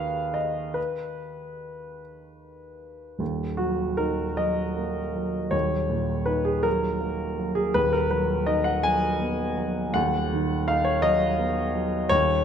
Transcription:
grand piano
Already playing: D#2 D#3 G#4 B4 F5
0.34 D#5
0.74 B4
3.19 D#1 D#2
3.57 F#3 F#4
3.97 D#4 A#4
4.37 F#3 D#5
4.77 A#3
5.15 F#3
5.51 D#1 D#2 C#5
5.90 A#2
6.26 D#4 B4
6.45 G#4
6.63 F#3 A#4
7.01 A#3
7.39 F#3
7.55 G#4
7.74 D#1 D#2 B4
7.93 A#4
8.11 F#3 B4
8.46 D#4 D#5
8.64 F#5
8.83 F#3 G#5
9.20 B3
9.58 F#3
9.94 D#1 D#2 F#5
10.33 D#3
10.68 D#4 F5
10.85 C#5
11.02 F#3 D#5
11.39 B3
11.75 F#3
12.09 D#1 D#2 C#5

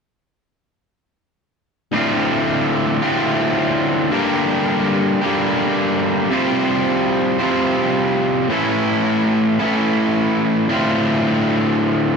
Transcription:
distorted electric guitar
1.92 D2 A2 D3 A3 C4 F4
3.02 D2 A2 D3 A3 C4 F4
4.11 G2 D3 G3 A#3 D4 G4
5.21 G2 D3 G3 A#3 D4 G4
6.30 C3 G3 C4 F4 G4 C5
7.39 C3 G3 C4 F4 G4 C5
8.49 A2 E3 A3 C#4 E4
8.53 A4
9.59 A2 E3 A3 C#4 E4 A4
10.68 D2 A2 D3 A3 C4 F4

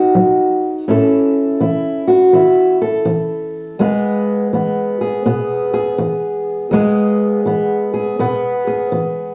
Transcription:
steel-string acoustic guitar
Already playing: B3 D#4 F#4
0.15 F#3
0.88 A2 C#4 E4 A4
1.60 E3 E4
2.08 F#4
2.33 E3 E4
2.82 A4
3.05 E3
3.79 E2 G#3 B3 G#4
4.53 E3 B3
5.01 G#4
5.26 B2 B3
5.74 G#4
5.99 E3
6.71 E2 G#3 B3 G#4
7.46 E3 B3
7.94 G#4
8.19 B2 B3
8.67 G#4
8.92 E3

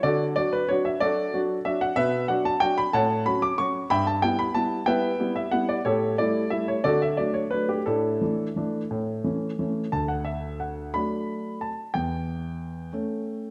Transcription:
grand piano
0.03 D3 F#4 A4 D5
0.36 F#3 D4 F#4 D5
0.53 B4
0.69 F#3 D4 F#4 C#5
0.85 E5
1.00 F#3 D4 F#4 A4 D5
1.33 F#3 D4 F#4
1.65 F#3 D4 F#4 E5
1.81 F#5
1.96 B2 B4 E5
2.28 F#3 D4 F#4 F#5
2.45 A5
2.60 F#3 D4 F#4 G5
2.78 B5
2.93 A2 C#5 F#5 A5
3.26 F#3 C#4 F#4 B5
3.42 D6
3.58 F#3 C#4 F#4 C#6
3.90 G2 E5 G5 B5
4.07 A5
4.22 G3 B3 E4 G5
4.39 B5
4.54 G3 B3 E4 A5
4.86 G3 B3 E4 B4 E5 G5
5.20 G3 B3 E4
5.36 E5
5.51 G3 B3 E4 F#5
5.69 D5
5.85 A2 G4 A4 C#5
6.18 G3 A3 E4 D5
6.50 G3 A3 E4 E5
6.68 C#5
6.84 D3 F#4 A4 D5
7.02 E5
7.17 F#3 A3 D4 D5
7.34 C#5
7.51 F#3 A3 D4 B4
7.69 G4
7.86 A2 D4 E4 A4
8.21 E3 A3 D4
8.56 E3 A3 D4
8.91 A2
9.24 E3 A3 C#4
9.59 E3 A3 C#4
9.92 D2 A5
10.08 F#5
10.25 E5
10.60 F#5
10.94 F#3 A3 D4 B5
11.61 A5
11.94 E2 G5
12.93 A3 C#4

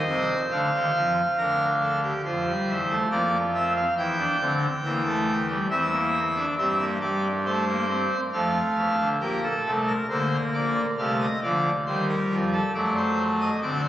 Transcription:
pipe organ
Already playing: C5 D#5
0.07 C2 C3
0.51 D2 D3 F5
0.73 D#2 D#3
0.94 F2 F3
1.38 D2 D3 A#4
1.81 A4
2.03 G4
2.24 F2 F3 C5
2.46 G3
2.68 E2 E3
2.89 A3
3.11 F2 F3 A#3 D5
3.54 C4 E5
3.76 F5
3.97 E2 E3 E4 G5
4.18 D4
4.40 D2 D3 C4
4.84 E2 E3 A#3
5.06 A3
5.48 G3
5.70 E2 E3 C4 E5
5.92 A#3
6.36 D4
6.58 G2 G3 C4 E5
6.80 A#3
7.01 G3 D5
7.45 A3 C5
7.67 A#3
7.89 C4
8.33 F2 F3 A3 F5
8.76 E2 E3
8.98 D2 D3
9.20 A#1 A#2 A#3 G4
9.43 A4
9.65 C2 C3 A3
9.87 A#4
10.09 D2 D3 A#3 C5
10.54 A#1 A#2 D5
10.98 C2 C3 A3 F5
11.20 D#5
11.42 D2 D3 F3 D5
11.86 D#2 D#3 G3 C5
12.08 A#4
12.31 F2 F3
12.52 A4
12.73 F#2 F#3 A3 D5
12.96 C5
13.40 D#5
13.62 D2 D3 C4 D5
13.84 C5

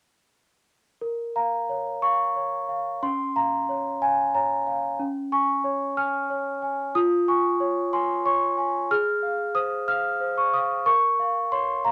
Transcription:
celesta
1.01 A#4
1.36 F5 A#5
1.69 C#5
2.02 F5 C#6
2.36 C#5
2.69 F5
3.03 C#4 C6
3.36 F5 A#5
3.69 C#5
4.02 F5 G#5
4.35 C#5 A#5
4.67 F5
5.00 C#4
5.32 G#5 C#6
5.64 C#5
5.97 G#5 F6
6.30 C#5
6.62 G#5
6.95 F4 D#6
7.28 G#5 C#6
7.60 C#5
7.93 G#5 C6
8.26 C#5 C#6
8.58 G#5
8.91 G#4 F6
9.23 F5
9.55 C5 D#6
9.88 F5 F6
10.20 C5
10.38 C#6
10.53 F5 D#6
10.86 A#4 C#6
11.19 F5
11.52 C#5 C6
11.85 F5 A#5

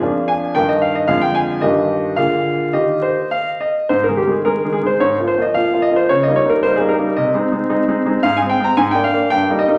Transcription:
grand piano
Already playing: G#4
0.01 F2 F3 A#3 D4
0.28 G#5
0.55 G2 D#3 A#3 D#4 G5
0.69 D#5
0.82 F5
0.95 D#5
1.07 F2 D3 G#3 G#4 F5
1.21 G5
1.35 G#5
1.61 G2 D#3 A#3 G4 D#5
2.16 A#2 D3 A#3 G#4 F5
2.73 D#3 A#3 G4 D#5
3.02 C5
3.31 F5
3.61 D#5
3.89 G#2 C5
4.04 A#4
4.09 D#3 G#3 G#4
4.17 G4
4.27 D#3 G#3 G#4
4.32 G#4
4.45 D#3 G#3 G#4 A#4
4.65 D#3 G#3 G#4
4.72 G#4
4.83 D#3 G#3 G#4
4.87 C5
5.00 G#2 C#5
5.20 F3 A#3 F4
5.28 C5
5.38 F3 A#3 F4 D#5
5.54 F3 A#3 F4 F5
5.73 F3 A#3 F4
5.82 D#5
5.91 F3 A#3 F4
5.96 C5
6.09 C#3 C#5
6.23 D#5
6.28 G3 A#3 D#4
6.36 C#5
6.45 G3 A#3 D#4
6.50 A#4
6.63 G3 A#3 D#4 C5
6.76 G3 G#4
6.80 A#3 D#4
6.89 A#4
6.99 G3 A#3 D#4
7.16 C3 D#5
7.34 G#3 C4 D#4
7.52 G#3 C4 D#4
7.69 G#3 C4 D#4
7.88 G#3 C4 D#4
8.06 G#3 C4 D#4
8.23 G#2 F5
8.37 G#5
8.42 G#3 C4
8.49 G5
8.60 G#3 C4 A#5
8.77 G#2 G#5
8.91 A#3 G5
8.95 D4
9.04 F5
9.13 A#3 D4
9.30 G2 G5
9.50 G3 A#3 D#4
9.59 D#5
9.68 G3 A#3 D#4

